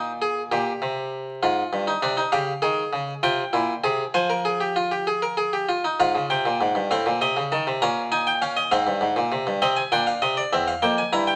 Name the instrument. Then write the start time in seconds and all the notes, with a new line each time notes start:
harpsichord
Already playing: A#2
0.22 G#4
0.52 A#2 G4
0.82 C3
1.43 G#2 F4
1.73 G2
1.87 D#4
2.02 C3 D4
2.17 D#4
2.32 C#3 G4 F5
2.62 D#3 G#4
2.93 C#3
3.23 C3 F4 G5
3.53 A#2 E4
3.84 C3 G#4
4.14 F3 C5 G#5
4.30 A#4
4.45 G#4
4.61 G4
4.76 F4
4.91 G4
5.07 G#4
5.22 A#4
5.37 G#4
5.53 G4
5.69 F4
5.84 D#4
6.00 G#2 F4 F5
6.15 C#3
6.30 C3 G5
6.46 A#2
6.61 G#2
6.75 G2
6.91 A2 C4 F5
7.06 A#2
7.21 C3 D#5
7.37 C#3
7.52 D#3 A5
7.67 C3
7.82 A#2 C#4 A#5
8.12 D#4 G#5
8.27 G5
8.42 C#4 F5
8.57 D#5
8.71 G#2 C4 F5
8.87 G2
9.01 G#2
9.16 A#2
9.32 C3
9.47 G2
9.62 C3 C4 D#5
9.77 G#5
9.92 A#2 D4 G5
10.07 F5
10.22 C3 D#5
10.37 D5
10.53 E2 C4 E5
10.68 F5
10.82 F2 A#3 G5
10.98 G#5
11.13 G2 E4 A#5
11.27 G5